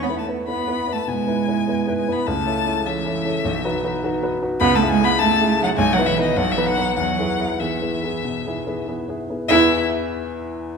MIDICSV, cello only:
0, 0, Header, 1, 2, 480
1, 0, Start_track
1, 0, Key_signature, 4, "major"
1, 0, Tempo, 589391
1, 1849, Time_signature, 4, 2, 24, 8
1, 5191, Tempo, 620476
1, 8596, End_track
2, 0, Start_track
2, 0, Title_t, "Cello"
2, 0, Program_c, 0, 42
2, 23, Note_on_c, 0, 59, 73
2, 150, Note_on_c, 0, 57, 66
2, 162, Note_off_c, 0, 59, 0
2, 376, Note_off_c, 0, 57, 0
2, 381, Note_on_c, 0, 59, 75
2, 745, Note_off_c, 0, 59, 0
2, 760, Note_on_c, 0, 57, 70
2, 809, Note_off_c, 0, 57, 0
2, 882, Note_on_c, 0, 56, 91
2, 1594, Note_off_c, 0, 56, 0
2, 1611, Note_on_c, 0, 56, 78
2, 1659, Note_off_c, 0, 56, 0
2, 1731, Note_on_c, 0, 59, 79
2, 1847, Note_off_c, 0, 59, 0
2, 1853, Note_on_c, 0, 57, 89
2, 2321, Note_off_c, 0, 57, 0
2, 2324, Note_on_c, 0, 52, 79
2, 3491, Note_off_c, 0, 52, 0
2, 3752, Note_on_c, 0, 59, 120
2, 3872, Note_on_c, 0, 57, 102
2, 3885, Note_off_c, 0, 59, 0
2, 3983, Note_off_c, 0, 57, 0
2, 3988, Note_on_c, 0, 56, 116
2, 4105, Note_off_c, 0, 56, 0
2, 4109, Note_on_c, 0, 59, 100
2, 4156, Note_off_c, 0, 59, 0
2, 4217, Note_on_c, 0, 57, 105
2, 4573, Note_off_c, 0, 57, 0
2, 4577, Note_on_c, 0, 54, 105
2, 4627, Note_off_c, 0, 54, 0
2, 4695, Note_on_c, 0, 56, 121
2, 4745, Note_off_c, 0, 56, 0
2, 4827, Note_on_c, 0, 54, 106
2, 4875, Note_off_c, 0, 54, 0
2, 4948, Note_on_c, 0, 52, 97
2, 5066, Note_off_c, 0, 52, 0
2, 5081, Note_on_c, 0, 51, 94
2, 5127, Note_off_c, 0, 51, 0
2, 5189, Note_on_c, 0, 54, 97
2, 5317, Note_on_c, 0, 52, 90
2, 5329, Note_off_c, 0, 54, 0
2, 5428, Note_on_c, 0, 54, 96
2, 5440, Note_off_c, 0, 52, 0
2, 5649, Note_off_c, 0, 54, 0
2, 5654, Note_on_c, 0, 54, 98
2, 6131, Note_off_c, 0, 54, 0
2, 6146, Note_on_c, 0, 52, 69
2, 7101, Note_off_c, 0, 52, 0
2, 7603, Note_on_c, 0, 64, 116
2, 7867, Note_off_c, 0, 64, 0
2, 8596, End_track
0, 0, End_of_file